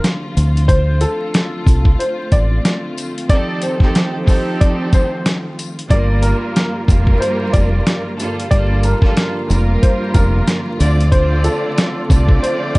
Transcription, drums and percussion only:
0.04 snare, closed hi-hat
0.37 closed hi-hat, tambourine
0.57 closed hi-hat
0.69 kick, closed hi-hat
1.01 closed hi-hat, tambourine
1.34 snare, closed hi-hat
1.67 kick, closed hi-hat, tambourine
1.85 kick
2.00 closed hi-hat
2.32 kick, closed hi-hat, tambourine
2.65 snare, closed hi-hat
2.98 closed hi-hat, tambourine
3.18 closed hi-hat
3.29 kick, closed hi-hat
3.62 closed hi-hat, tambourine
3.80 kick, snare
3.95 snare, closed hi-hat
4.27 kick, open hi-hat, tambourine
4.61 kick, closed hi-hat
4.93 kick, closed hi-hat, tambourine
5.26 snare, closed hi-hat
5.59 closed hi-hat, tambourine
5.79 closed hi-hat
5.90 kick, closed hi-hat
6.23 closed hi-hat, tambourine
6.56 snare, closed hi-hat
6.88 kick, closed hi-hat, tambourine
7.07 kick
7.22 closed hi-hat
7.54 kick, closed hi-hat, tambourine
7.87 snare, closed hi-hat
8.19 closed hi-hat, tambourine
8.40 closed hi-hat
8.51 kick, closed hi-hat
8.83 closed hi-hat, tambourine
9.02 kick, snare
9.17 snare, closed hi-hat
9.50 closed hi-hat, tambourine
9.83 kick, closed hi-hat
10.14 kick, closed hi-hat, tambourine
10.48 snare, closed hi-hat
10.80 closed hi-hat, tambourine
11.00 closed hi-hat
11.12 kick, closed hi-hat
11.44 closed hi-hat, tambourine
11.78 snare, closed hi-hat
12.10 kick, closed hi-hat, tambourine
12.29 kick
12.44 closed hi-hat
12.75 kick, closed hi-hat

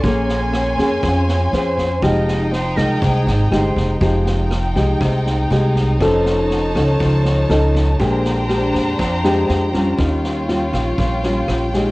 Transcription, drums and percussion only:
0.04 kick, snare
0.29 snare
0.53 cross-stick, snare
0.78 kick, snare
1.03 kick, cross-stick, snare
1.28 snare
1.53 snare
1.78 kick, snare
2.02 kick, cross-stick, snare
2.28 snare
2.52 snare
2.77 kick, cross-stick, snare
3.02 kick, snare
3.27 snare
3.52 cross-stick, snare
3.76 kick, snare
4.01 kick, snare
4.26 snare
4.51 cross-stick, snare
4.76 kick, snare
5.01 kick, cross-stick, snare
5.26 snare
5.50 snare
5.76 kick, snare
6.01 kick, cross-stick, snare
6.26 snare
6.50 snare
6.75 kick, cross-stick, snare
7.00 kick, snare
7.25 snare
7.50 cross-stick, snare
7.75 kick, snare
8.00 kick, snare
8.25 snare
8.49 cross-stick, snare
8.74 kick, snare
8.99 kick, cross-stick, snare
9.24 snare
9.49 snare
9.73 kick, snare
9.99 kick, cross-stick, snare
10.24 snare
10.48 snare
10.73 kick, cross-stick, snare
10.98 kick, snare
11.23 snare
11.48 cross-stick, snare
11.73 kick, snare

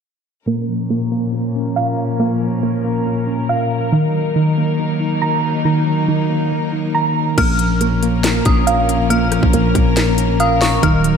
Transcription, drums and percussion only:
7.38 kick, closed hi-hat, crash
7.59 closed hi-hat
7.81 closed hi-hat
8.03 closed hi-hat
8.24 snare, closed hi-hat
8.45 kick, closed hi-hat
8.67 closed hi-hat
8.89 closed hi-hat
9.10 closed hi-hat
9.32 cross-stick, closed hi-hat
9.43 kick
9.53 closed hi-hat
9.75 kick, closed hi-hat
9.97 snare, closed hi-hat
10.18 closed hi-hat
10.40 closed hi-hat
10.61 snare, open hi-hat
10.83 kick, closed hi-hat
11.04 closed hi-hat

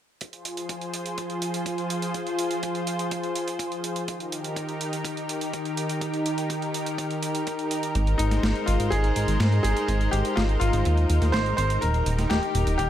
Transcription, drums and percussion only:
0.21 kick, closed hi-hat
0.33 closed hi-hat
0.45 closed hi-hat
0.57 closed hi-hat
0.69 kick, closed hi-hat
0.81 closed hi-hat
0.94 closed hi-hat
1.06 closed hi-hat
1.18 kick, closed hi-hat
1.30 closed hi-hat
1.42 closed hi-hat
1.54 closed hi-hat
1.66 kick, closed hi-hat
1.78 closed hi-hat
1.90 closed hi-hat
2.02 closed hi-hat
2.14 kick, closed hi-hat
2.27 closed hi-hat
2.39 closed hi-hat
2.51 closed hi-hat
2.63 kick, closed hi-hat
2.75 closed hi-hat
2.87 closed hi-hat
2.99 closed hi-hat
3.11 kick, closed hi-hat
3.24 closed hi-hat
3.36 closed hi-hat
3.48 closed hi-hat
3.59 kick, closed hi-hat
3.72 closed hi-hat
3.84 closed hi-hat
3.96 closed hi-hat
4.08 kick, closed hi-hat
4.20 closed hi-hat
4.32 closed hi-hat
4.44 closed hi-hat
4.56 kick, closed hi-hat
4.69 closed hi-hat
4.81 closed hi-hat
4.93 closed hi-hat
5.05 kick, closed hi-hat
5.17 closed hi-hat
5.29 closed hi-hat
5.41 closed hi-hat
5.53 kick, closed hi-hat
5.65 closed hi-hat
5.77 closed hi-hat
5.89 closed hi-hat
6.01 kick, closed hi-hat
6.14 closed hi-hat
6.26 closed hi-hat
6.38 closed hi-hat
6.50 kick, closed hi-hat
6.62 closed hi-hat
6.74 closed hi-hat
6.86 closed hi-hat
6.98 kick, closed hi-hat
7.11 closed hi-hat
7.23 closed hi-hat
7.35 closed hi-hat
7.47 kick, closed hi-hat
7.59 closed hi-hat
7.71 closed hi-hat
7.83 closed hi-hat
7.95 kick, closed hi-hat
8.07 closed hi-hat
8.19 closed hi-hat
8.31 snare, closed hi-hat
8.43 kick, snare, closed hi-hat
8.56 closed hi-hat
8.68 closed hi-hat
8.80 closed hi-hat
8.92 kick, closed hi-hat
9.04 closed hi-hat
9.16 closed hi-hat
9.28 closed hi-hat
9.40 kick, snare, closed hi-hat
9.52 closed hi-hat
9.64 closed hi-hat
9.77 closed hi-hat
9.88 kick, closed hi-hat
10.01 closed hi-hat
10.13 closed hi-hat
10.25 closed hi-hat
10.37 kick, snare, closed hi-hat
10.49 closed hi-hat
10.61 closed hi-hat
10.73 closed hi-hat
10.85 kick, closed hi-hat
10.97 closed hi-hat
11.10 closed hi-hat
11.22 snare, closed hi-hat
11.33 kick, snare, closed hi-hat
11.46 closed hi-hat
11.58 closed hi-hat
11.70 closed hi-hat
11.82 kick, closed hi-hat
11.94 closed hi-hat
12.06 closed hi-hat
12.19 snare, closed hi-hat
12.30 kick, snare, closed hi-hat
12.43 closed hi-hat
12.55 closed hi-hat
12.67 closed hi-hat
12.79 kick, closed hi-hat

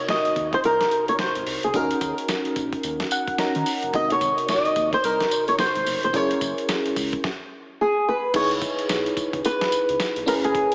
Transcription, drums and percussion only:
0.09 snare, closed hi-hat
0.25 closed hi-hat
0.36 kick, closed hi-hat
0.53 kick, closed hi-hat
0.64 closed hi-hat
0.81 snare, closed hi-hat
0.91 closed hi-hat
1.08 closed hi-hat
1.19 snare, closed hi-hat
1.35 closed hi-hat
1.47 open hi-hat
1.63 closed hi-hat
1.74 kick, closed hi-hat
1.91 closed hi-hat
2.01 kick, closed hi-hat, tambourine
2.18 closed hi-hat
2.28 snare, closed hi-hat, tambourine
2.45 closed hi-hat
2.56 kick, closed hi-hat, tambourine
2.73 kick, closed hi-hat
2.83 closed hi-hat, tambourine
3.00 snare, closed hi-hat
3.11 closed hi-hat, tambourine
3.28 kick, closed hi-hat
3.38 snare, closed hi-hat, tambourine
3.55 closed hi-hat
3.66 open hi-hat, tambourine
3.83 closed hi-hat
3.94 kick, closed hi-hat
4.10 closed hi-hat
4.21 kick, closed hi-hat, tambourine
4.38 closed hi-hat
4.48 snare, closed hi-hat, tambourine
4.65 closed hi-hat
4.76 kick, closed hi-hat, tambourine
4.93 kick, closed hi-hat
5.04 closed hi-hat, tambourine
5.20 snare, closed hi-hat
5.31 closed hi-hat, tambourine
5.48 closed hi-hat
5.59 snare, closed hi-hat, tambourine
5.75 closed hi-hat
5.86 open hi-hat, tambourine
6.03 closed hi-hat
6.14 kick, closed hi-hat
6.31 closed hi-hat
6.41 kick, closed hi-hat, tambourine
6.58 closed hi-hat
6.69 snare, closed hi-hat, tambourine
6.86 closed hi-hat
6.96 kick, open hi-hat, tambourine
7.13 kick, closed hi-hat
7.24 kick, snare
8.34 kick, closed hi-hat, crash
8.51 closed hi-hat
8.62 kick, closed hi-hat, tambourine
8.79 closed hi-hat
8.89 snare, closed hi-hat, tambourine
9.06 closed hi-hat
9.17 kick, closed hi-hat, tambourine
9.33 kick, closed hi-hat
9.44 closed hi-hat, tambourine
9.61 snare, closed hi-hat
9.72 closed hi-hat, tambourine
9.89 closed hi-hat
10.00 snare, closed hi-hat, tambourine
10.16 closed hi-hat
10.28 open hi-hat, tambourine
10.44 closed hi-hat
10.55 kick, closed hi-hat
10.72 closed hi-hat

